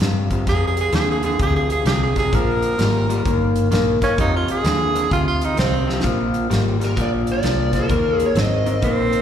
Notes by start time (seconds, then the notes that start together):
0.00 F2 G2 C3, snare, closed hi-hat
0.31 F2 C3, kick, closed hi-hat
0.47 F2 C3 G#4, kick, snare, closed hi-hat
0.67 G#4
0.77 G#4, closed hi-hat
0.93 D#2 F2 D3 G#4, snare, closed hi-hat
1.11 G#4
1.23 F2 D3 G#4, closed hi-hat
1.39 D2 F2 C3 G#4, kick, closed hi-hat
1.56 G#4
1.70 G#4, closed hi-hat
1.85 C2 F2 C3 G#4, snare, closed hi-hat
2.03 G#4
2.16 F2 C3 G#4, kick, snare, closed hi-hat
2.32 A#1 A#2 F3 A#4, kick, closed hi-hat
2.62 closed hi-hat
2.79 G#1 A#2 G3, snare, closed hi-hat
3.09 A#2 G3, closed hi-hat
3.25 G1 D#3 A#3, kick, closed hi-hat
3.56 closed hi-hat
3.71 A#1 D#3 A#3, snare, closed hi-hat
4.01 D#3 A#3 C#4, kick, snare, closed hi-hat
4.17 F2 C3 D#4, kick, closed hi-hat
4.36 F4
4.48 G#4, muted fingered electric bass stroke, closed hi-hat
4.64 D#2 F2 D3, snare, closed hi-hat
4.94 F2 D3, closed hi-hat
5.11 D2 F2 C3 F4, kick, closed hi-hat
5.28 F4
5.41 D#4, closed hi-hat
5.57 C2 F2 C3 C4, snare, closed hi-hat
5.87 F2 C3, snare
6.00 A#1 A#2 F3, kick, snare, closed hi-hat
6.34 closed hi-hat
6.50 G#1 A#2 G3, snare, closed hi-hat
6.80 A#2 G3, snare, closed hi-hat
6.85 A#4
6.96 A#1 A#2 F3, kick, closed hi-hat
7.01 D5
7.27 closed hi-hat
7.32 D5
7.43 C2 A#2 F3, snare, closed hi-hat
7.73 A#2 F3, kick, snare, closed hi-hat
7.80 A#4
7.89 D#2 D#3 A#3, kick, closed hi-hat
8.20 muted fingered electric bass stroke, closed hi-hat
8.26 C#5
8.35 G#1 D#3 C4, snare, closed hi-hat
8.41 D#5
8.66 D#3 C4, closed hi-hat
8.82 A#1 D#3 A#3 C4, kick, closed hi-hat
9.13 closed hi-hat